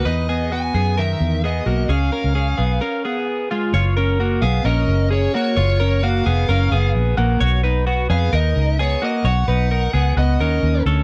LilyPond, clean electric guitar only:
\new Staff \with { instrumentName = "Clean electric guitar" } { \time 4/4 \key fis \major \tempo 4 = 131 <dis' b'>8 <b gis'>8 <b fis'>8 <b gis'>8 <dis ais'>4 <b gis'>8 <ais fis'>8 | <cis' gis'>8 <cis' ais'>8 <cis' gis'>8 <b gis'>8 <cis' ais'>8 <b gis'>4 <gis eis'>8 | <eis' cis''>8 <cis' ais'>8 <ais fis'>8 <b gis'>8 <cis' ais'>4 <cis' gis'>8 <ais fis'>8 | <eis' cis''>8 <cis' ais'>8 <ais fis'>8 <b gis'>8 <cis' ais'>8 <b gis'>4 <ais fis'>8 |
<fis' cis''>8 <dis' b'>8 <b fis'>8 <b gis'>8 <dis' ais'>4 <b gis'>8 <ais fis'>8 | <fis' cis''>8 <dis' b'>8 <dis' ais'>8 <b gis'>8 <b fis'>8 <cis' ais'>4 <cis' a'>8 | }